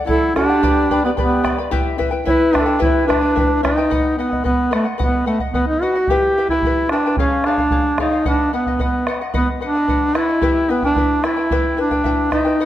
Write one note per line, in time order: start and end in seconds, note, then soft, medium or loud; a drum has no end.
0.06 0.33 E4 loud
0.06 0.34 A4 medium
0.06 0.35 D5 medium
0.06 0.35 F#5 medium
0.06 bombo low medium
0.36 1.00 D4 loud
0.36 1.00 G4 medium
0.36 0.49 A4 medium
0.36 0.49 D5 medium
0.36 0.48 F#5 medium
0.36 bombo rim soft
0.36 bombo low soft
0.49 0.62 D5 soft
0.49 0.63 F#5 medium
0.63 0.90 G4 medium
0.63 0.90 B4 medium
0.63 0.90 D5 medium
0.63 0.90 G5 medium
0.63 0.91 B5 medium
0.63 bombo low medium
0.90 1.04 B4 medium
0.90 1.04 D5 medium
0.90 1.04 G5 medium
0.90 1.03 B5 medium
0.90 bombo low soft
1.05 1.11 B3 medium
1.05 1.11 G4 medium
1.05 1.16 B4 soft
1.05 1.17 D5 medium
1.05 1.17 B5 soft
1.17 1.57 B3 medium
1.17 1.22 G#4 medium
1.17 1.43 B4 medium
1.17 1.44 D5 medium
1.17 1.42 G5 medium
1.17 1.44 B5 medium
1.17 bombo low medium
1.21 1.56 G4 medium
1.44 1.58 B4 medium
1.44 1.58 D5 medium
1.44 1.58 G5 medium
1.44 1.57 B5 medium
1.44 bombo rim soft
1.44 bombo low soft
1.58 1.71 B4 soft
1.58 1.72 D5 soft
1.58 1.72 B5 soft
1.71 1.97 E4 medium
1.71 1.99 G4 medium
1.71 1.98 B4 medium
1.71 1.97 E5 medium
1.71 1.98 G5 medium
1.71 bombo low medium
1.98 2.11 E4 medium
1.98 2.11 B4 medium
1.98 2.12 E5 medium
1.98 2.10 G5 medium
1.98 bombo low soft
2.11 2.25 E4 soft
2.11 2.25 B4 soft
2.11 2.26 G5 medium
2.25 2.52 E4 medium
2.25 2.56 E4 loud
2.25 2.52 B4 medium
2.25 2.32 C#5 medium
2.25 2.51 E5 medium
2.25 2.52 G5 medium
2.25 bombo low medium
2.31 2.56 B4 medium
2.53 2.81 D4 medium
2.53 2.66 E4 medium
2.53 2.65 B4 medium
2.53 2.62 B4 medium
2.53 2.67 E5 medium
2.53 2.65 G5 medium
2.53 bombo rim soft
2.53 bombo low medium
2.61 2.83 A4 medium
2.66 2.79 E4 soft
2.66 2.79 B4 soft
2.66 2.79 G5 medium
2.79 3.07 E4 medium
2.79 3.07 G4 medium
2.79 3.07 B4 medium
2.79 3.06 E5 medium
2.79 3.08 G5 medium
2.79 bombo low medium
2.83 3.60 B4 medium
2.83 2.88 C#5 medium
3.07 3.59 D4 medium
3.07 3.22 E4 medium
3.07 3.21 B4 medium
3.07 3.22 E5 medium
3.07 3.20 G5 medium
3.07 bombo rim soft
3.07 bombo low medium
3.21 3.35 E4 soft
3.21 3.35 B4 soft
3.21 3.35 G5 soft
3.36 3.63 E4 medium
3.36 3.63 B4 medium
3.36 3.62 E5 medium
3.36 3.64 G5 medium
3.36 bombo low medium
3.63 4.14 D#4 medium
3.63 3.77 E4 medium
3.63 3.77 B4 medium
3.63 3.77 E5 medium
3.63 3.76 G5 medium
3.63 bombo rim medium
3.63 bombo low medium
3.77 3.90 E4 soft
3.77 3.89 B4 medium
3.77 3.91 G5 medium
3.90 4.17 B4 medium
3.90 4.18 D#5 medium
3.90 4.18 F#5 medium
3.90 bombo low medium
4.17 4.43 B3 medium
4.17 4.32 B4 medium
4.17 4.32 D#5 soft
4.17 4.30 F#5 medium
4.31 4.44 D#5 soft
4.31 4.45 F#5 soft
4.31 bombo low soft
4.44 4.71 B3 medium
4.44 4.70 B4 medium
4.44 4.71 D#5 medium
4.44 4.72 F#5 medium
4.44 bombo low medium
4.71 4.86 A3 medium
4.71 4.85 B4 medium
4.71 4.85 D#5 medium
4.71 4.83 F#5 medium
4.71 bombo rim soft
4.85 4.98 D#5 soft
4.85 4.98 F#5 soft
4.98 5.25 B3 medium
4.98 5.25 B4 medium
4.98 5.26 D#5 medium
4.98 5.26 F#5 medium
4.98 bombo low medium
5.26 5.39 A3 medium
5.26 5.40 B4 medium
5.26 5.40 D#5 medium
5.26 5.39 F#5 medium
5.39 5.53 D#5 soft
5.39 5.54 F#5 soft
5.39 bombo low soft
5.53 5.67 B3 medium
5.53 5.80 B4 medium
5.53 5.82 D#5 soft
5.53 5.81 F#5 medium
5.53 bombo low medium
5.67 5.84 D#4 medium
5.82 6.12 F#4 medium
5.82 5.95 B4 medium
5.82 5.95 D#5 medium
5.82 5.94 F#5 medium
5.95 6.09 D#5 soft
5.95 6.09 F#5 medium
6.08 6.37 E4 medium
6.08 6.36 G4 medium
6.08 6.49 G4 loud
6.08 6.37 B4 medium
6.08 6.37 E5 medium
6.08 6.37 G5 medium
6.08 bombo low medium
6.38 6.50 E4 medium
6.38 6.50 B4 medium
6.38 6.50 E5 soft
6.38 6.49 G5 medium
6.49 6.87 E4 medium
6.49 6.64 E4 soft
6.49 6.64 B4 soft
6.49 6.63 G5 soft
6.49 bombo low soft
6.63 6.91 E4 medium
6.63 6.91 B4 medium
6.63 6.91 E5 medium
6.63 6.92 G5 medium
6.63 bombo low medium
6.89 7.15 D4 medium
6.89 7.05 E4 medium
6.89 7.05 B4 medium
6.89 7.05 E5 medium
6.89 7.05 G5 medium
6.89 bombo rim medium
7.06 7.19 E4 soft
7.06 7.19 B4 soft
7.06 7.18 G5 soft
7.17 7.47 C#4 medium
7.17 7.45 G#4 medium
7.17 7.45 C#5 medium
7.17 7.46 F5 medium
7.17 bombo low medium
7.44 7.99 D4 medium
7.44 7.59 G#4 soft
7.44 7.59 C#5 medium
7.44 7.57 F5 medium
7.44 bombo rim soft
7.58 7.71 C#5 soft
7.58 7.71 F5 soft
7.58 bombo low soft
7.71 7.97 G#4 medium
7.71 7.99 C#5 medium
7.71 7.99 F5 medium
7.71 bombo low medium
7.98 8.25 D#4 medium
7.98 8.12 G#4 medium
7.98 8.13 C#5 medium
7.98 8.11 F5 medium
7.98 bombo rim soft
7.98 bombo low soft
8.12 8.27 C#5 soft
8.12 8.26 F5 soft
8.25 8.52 D4 medium
8.25 8.52 B4 medium
8.25 8.52 D#5 medium
8.25 8.53 F#5 medium
8.25 bombo low medium
8.53 8.79 B3 medium
8.53 8.66 B4 soft
8.53 8.67 D#5 medium
8.53 8.66 F#5 medium
8.66 8.79 D#5 soft
8.66 8.80 F#5 soft
8.66 bombo low soft
8.79 9.06 B4 medium
8.79 9.07 D#5 medium
8.79 9.07 F#5 medium
8.79 bombo low medium
8.83 9.07 B3 medium
9.07 9.21 B4 medium
9.07 9.21 D#5 medium
9.07 9.20 F#5 medium
9.07 bombo rim soft
9.21 9.33 D#5 soft
9.21 9.34 F#5 soft
9.34 9.48 B3 medium
9.34 9.60 B4 medium
9.34 9.61 D#5 medium
9.34 9.61 F#5 medium
9.34 bombo low medium
9.61 10.18 D4 medium
9.61 9.75 B4 soft
9.61 9.75 D#5 medium
9.61 9.74 F#5 medium
9.75 9.88 D#5 soft
9.75 9.88 F#5 medium
9.88 10.13 B4 soft
9.88 10.14 D#5 medium
9.88 10.14 F#5 medium
9.88 bombo low medium
10.14 10.71 E4 loud
10.14 10.28 B4 medium
10.14 10.29 D#5 medium
10.14 10.28 F#5 medium
10.14 bombo rim soft
10.29 10.42 D#5 soft
10.29 10.42 F#5 soft
10.42 10.68 E4 medium
10.42 10.69 G4 medium
10.42 10.69 B4 medium
10.42 10.67 E5 medium
10.42 10.69 G5 medium
10.42 bombo low medium
10.69 10.83 B3 medium
10.69 10.83 E4 medium
10.69 10.83 B4 medium
10.69 10.82 E5 medium
10.69 10.83 G5 medium
10.82 11.26 D4 medium
10.82 10.96 E4 soft
10.82 10.96 B4 soft
10.82 10.97 G5 medium
10.82 bombo low soft
10.96 11.23 E4 medium
10.96 11.23 B4 medium
10.96 11.23 E5 medium
10.96 11.24 G5 medium
10.96 bombo low medium
11.24 11.37 E4 medium
11.24 11.78 E4 medium
11.24 11.36 B4 medium
11.24 11.37 E5 soft
11.24 11.35 G5 medium
11.24 bombo rim soft
11.37 11.51 E4 soft
11.37 11.51 B4 soft
11.37 11.50 G5 medium
11.51 11.77 E4 medium
11.51 11.78 G4 medium
11.51 11.77 B4 medium
11.51 11.76 E5 medium
11.51 11.77 G5 medium
11.51 bombo low medium
11.77 12.29 D4 medium
11.77 11.91 E4 medium
11.77 11.91 B4 medium
11.77 11.91 E5 soft
11.77 11.90 G5 medium
11.91 12.04 E4 soft
11.91 12.04 B4 soft
11.91 12.04 G5 medium
11.91 bombo low soft
12.04 12.31 E4 medium
12.04 12.31 B4 medium
12.04 12.30 E5 medium
12.04 12.32 G5 medium
12.04 bombo low medium
12.31 12.65 D#4 medium
12.31 12.45 E4 medium
12.31 12.45 B4 medium
12.31 12.45 E5 medium
12.31 12.43 G5 medium
12.31 bombo rim medium
12.31 bombo low soft
12.45 12.59 E4 soft
12.45 12.59 B4 soft
12.45 12.58 G5 medium
12.60 12.65 B4 medium
12.60 12.65 D#5 medium
12.60 12.65 F#5 medium